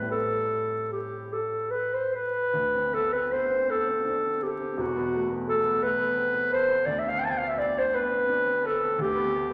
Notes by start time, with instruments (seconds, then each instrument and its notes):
Already playing: grand piano A2 G3, clarinet B4
0.00 grand piano C4 E4
0.06 grand piano A4
0.11 clarinet A4
0.92 clarinet G4
1.33 clarinet A4
1.71 clarinet B4
1.93 clarinet C5
2.15 clarinet B4
2.53 grand piano D2
2.74 grand piano C4
2.92 grand piano B3, clarinet A4
3.12 grand piano C4, clarinet B4
3.31 grand piano B3, clarinet C5
3.50 grand piano C4
3.70 grand piano B3, clarinet A4
3.87 grand piano C4
4.05 grand piano D4
4.25 grand piano C4
4.42 clarinet G4, grand piano A4
4.60 grand piano C4
4.77 grand piano E1 E2, clarinet F#4
4.96 grand piano B3
5.14 grand piano A3
5.31 grand piano B3
5.47 grand piano A3, clarinet A4
5.64 grand piano B3
5.81 grand piano A3, clarinet B4
5.98 grand piano B3
6.16 grand piano C4
6.34 grand piano B3
6.52 grand piano A4, clarinet C5
6.68 grand piano B3
6.86 grand piano D2, clarinet D5
6.99 clarinet E5
7.04 grand piano C4
7.08 clarinet F5
7.19 grand piano B3, clarinet G5
7.24 clarinet A5
7.30 clarinet G5
7.38 grand piano C4, clarinet F5
7.48 clarinet E5
7.57 grand piano B3, clarinet D5
7.76 grand piano C4, clarinet C5
7.93 grand piano B3, clarinet B4
8.11 grand piano C4
8.29 grand piano D4
8.47 grand piano C4
8.63 grand piano A4, clarinet A4
8.81 grand piano C4
8.98 grand piano D2, clarinet G4
9.15 grand piano B3
9.33 grand piano A3
9.50 grand piano B3